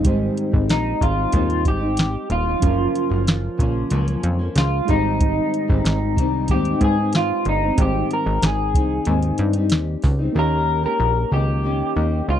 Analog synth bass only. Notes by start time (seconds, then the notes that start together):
0.04 G#1
0.53 G#1
0.69 A#1
1.01 G#1
1.33 D#2
1.65 G#1
2.30 D#1
2.62 F#1
3.11 F#1
3.59 A#1
3.91 C#2
4.24 F2
4.56 C#2
4.89 G#1
5.69 G#1
5.84 G#1
6.17 C2
6.49 D#2
6.81 G#2
7.46 G1
7.78 G#1
8.26 G#1
8.42 G#1
8.74 C2
9.07 D#2
9.39 G2
9.71 D#2
10.04 C#2
10.35 D#2
11.00 A#1
11.32 C#2
11.96 D#2
12.28 C#2